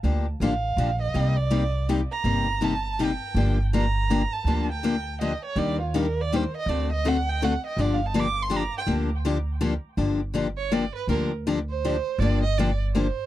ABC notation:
X:1
M:3/4
L:1/16
Q:"Swing" 1/4=163
K:Gm
V:1 name="Violin"
z4 f6 e2- | e2 d6 z2 b2- | b4 a4 g4- | g2 z2 b6 a2- |
a2 g6 e2 ^c2 | d2 F2 B2 d2 c2 e2 | d2 e2 ^f2 g2 f2 e2 | (3d2 f2 a2 d'2 c'2 b2 g2 |
z12 | z12 | z12 | z12 |]
V:2 name="Violin"
z12 | z12 | z12 | z12 |
z12 | z12 | z12 | z12 |
z12 | z6 ^c2 d2 =B2 | B2 z4 c6 | d2 e2 d2 z2 c4 |]
V:3 name="Steel-string acoustic guitar"
[D,F,B,DG]2 z2 [D,F,B,DG] z3 [D,F,B,DG] z3 | [C,G,B,EG]2 z2 [C,G,B,EG] z3 [C,G,B,EG] z3 | [C,G,B,EG]2 z2 [C,G,B,EG] z3 [C,G,B,EG] z3 | [D,F,B,DG]2 z2 [D,F,B,DG] z3 [D,F,B,DG] z3 |
[D,F,B,DG]2 z2 [D,F,B,DG] z3 [D,F,B,DG] z3 | [E,G,B,DG]2 z2 [E,G,B,DG] z3 [E,G,B,DG] z3 | [D,A,C^FA]2 z2 [D,A,CFA] z3 [D,A,CFA] z3 | [D,F,B,DG]2 z2 [D,F,B,DG] z3 [D,F,B,DG] z3 |
[D,F,B,DG]2 z2 [D,F,B,DG] z3 [D,F,B,DG] z3 | [D,F,B,DG]2 z2 [D,F,B,DG] z3 [D,F,B,DG] z3 | [D,F,B,DG]2 z2 [D,F,B,DG] z3 [D,F,B,DG] z3 | [D,F,B,DG]2 z2 [D,F,B,DG] z3 [D,F,B,DG] z3 |]
V:4 name="Upright bass" clef=bass
D,,4 A,,,4 B,,,4 | C,,12 | G,,,12 | G,,,12 |
D,,12 | E,,12 | D,,12 | G,,,12 |
D,,12 | G,,,12 | D,,12 | G,,,12 |]